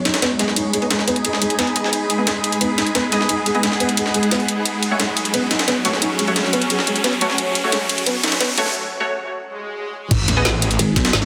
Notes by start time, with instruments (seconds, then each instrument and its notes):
Already playing: synth drone G#3 D#4 G#4, ambient pad F#4 G#4 D#5 B5, riser
0.05 felt piano D#4, snare, closed hi-hat, ride
0.14 ambient pad G#5, snare, closed hi-hat, ride
0.22 felt piano B3, snare, closed hi-hat, ride
0.39 felt piano G#3, synth stab B3 G#4 D#5, snare, closed hi-hat, ride
0.48 snare
0.56 felt piano D#4, closed hi-hat, ride
0.73 felt piano G#3, closed hi-hat, ride
0.82 synth stab B3 G#4 D#5, ride
0.91 felt piano G#3, snare, closed hi-hat, ride
0.99 snare
1.08 felt piano B3, closed hi-hat, ride
1.16 closed hi-hat
1.25 felt piano G#4, closed hi-hat, ride
1.33 snare
1.42 felt piano G#3, closed hi-hat, ride
1.50 closed hi-hat
1.59 felt piano B3, snare, closed hi-hat, ride
1.67 ride
1.76 synth stab B3 G#4 D#5, closed hi-hat, ride
1.84 snare
1.93 closed hi-hat, ride
2.10 closed hi-hat, ride
2.18 synth stab B3 G#4 D#5
2.27 felt piano G#3, snare, closed hi-hat, ride
2.44 closed hi-hat, ride
2.52 ambient pad F#5, closed hi-hat, ride
2.61 felt piano B3, closed hi-hat, ride
2.78 felt piano D#4, snare, closed hi-hat, ride
2.87 closed hi-hat
2.95 felt piano B3, snare, closed hi-hat, ride
3.12 felt piano G#3, synth stab B3 G#4 D#5, snare, closed hi-hat, ride
3.21 snare
3.29 felt piano D#4, closed hi-hat, ride
3.46 felt piano G#3, closed hi-hat, ride
3.55 synth stab B3 G#4 D#5, ride
3.63 felt piano G#3, snare, closed hi-hat, ride
3.72 snare
3.80 felt piano B3, closed hi-hat, ride
3.89 closed hi-hat
3.97 felt piano G#4, closed hi-hat, ride
4.06 snare
4.14 felt piano G#3, closed hi-hat, ride
4.23 closed hi-hat
4.31 felt piano B3, snare, closed hi-hat, ride
4.40 ride
4.48 closed hi-hat
4.65 synth drone F#3 C#4, ambient pad F#4, closed hi-hat, ride
4.83 closed hi-hat, ride
4.90 synth stab A3 F#4 C#5, ambient pad C#5
5.00 felt piano G#3, snare, closed hi-hat, ride
5.17 closed hi-hat, ride
5.25 closed hi-hat, ride
5.34 felt piano B3, closed hi-hat, ride
5.51 felt piano D#4, snare, closed hi-hat, ride
5.59 snare, closed hi-hat, ride
5.68 felt piano B3, snare, closed hi-hat, ride
5.85 felt piano A3, synth stab A3 F#4 C#5, snare, closed hi-hat, ride
5.93 snare
6.02 felt piano D#4, closed hi-hat, ride
6.19 felt piano G#3, closed hi-hat, ride
6.28 synth stab A3 F#4 C#5, ride
6.36 felt piano G#3, snare, closed hi-hat, ride
6.45 snare
6.53 felt piano B3, closed hi-hat, ride
6.62 closed hi-hat
6.70 felt piano G#4, closed hi-hat, ride
6.79 snare
6.87 felt piano G#3, closed hi-hat, ride
6.96 closed hi-hat
7.04 felt piano B3, snare, closed hi-hat, ride
7.13 ride
7.21 synth stab A3 F#4 C#5, closed hi-hat, ride
7.30 snare
7.38 closed hi-hat, ride
7.55 closed hi-hat, ride
7.64 synth stab A3 F#4 C#5
7.72 felt piano G#3, snare, closed hi-hat, ride
7.89 closed hi-hat, ride
7.98 closed hi-hat, ride
8.06 felt piano B3, closed hi-hat, ride
8.24 felt piano D#4, snare, closed hi-hat, ride
8.28 snare, ride
8.32 snare, closed hi-hat, ride
8.41 felt piano B3, snare, closed hi-hat, ride
8.58 felt piano A3, synth stab A3 F#4 C#5, snare, closed hi-hat, ride
8.66 snare
9.00 synth stab A3 F#4 C#5
9.43 swell
10.11 detuned saw bass G#1, synth drone G#3 D#4 G#4, ambient pad G#4, kick, closed hi-hat, crash, ride, sub drop
10.28 detuned saw bass A1, snare, closed hi-hat, ride
10.37 synth stab B3 G#4 D#5
10.45 snare, closed hi-hat, ride
10.50 ambient pad D#5
10.62 closed hi-hat, ride
10.71 closed hi-hat, ride
10.79 wobble bass G#1, closed hi-hat, ride
10.96 wobble bass B1, ambient pad G#5, kick, snare, closed hi-hat, ride
11.05 snare, closed hi-hat, ride
11.13 detuned saw bass G#1, snare, closed hi-hat, ride
11.22 snare